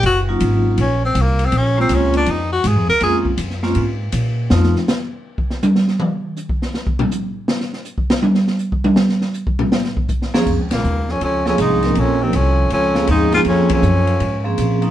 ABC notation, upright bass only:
X:1
M:4/4
L:1/8
Q:"Swing" 1/4=161
K:Bbm
V:1 name="Upright bass" clef=bass
G,,,2 A,,,2 B,,,2 C,,2 | B,,,2 D,,2 F,,2 (3A,, F,, D,, | F,,2 G,,2 A,,2 B,,2 | F,, z6 z |
z8 | z8 | z8 | (3F,, D,, B,,, E,,2 D,,2 C,,2 |
B,,,2 C,,2 D,,2 E,,2 | F,,2 G,,2 A,,2 B,,2 |]